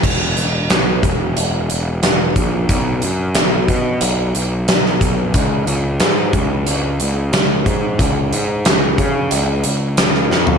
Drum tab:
CC |x---------------|----------------|----------------|----------------|
HH |--x-x-x-x-x-x-x-|x-x-x-x-x-x-x-x-|x-x-x-x-x-x-x-x-|x-x-x-x-x-x-x---|
SD |----o-------o---|----o-------oo--|----o-------o---|----o-------ooo-|
FT |----------------|----------------|----------------|---------------o|
BD |o-----o-------o-|o-----o-------o-|o-----o-------o-|o-----o---------|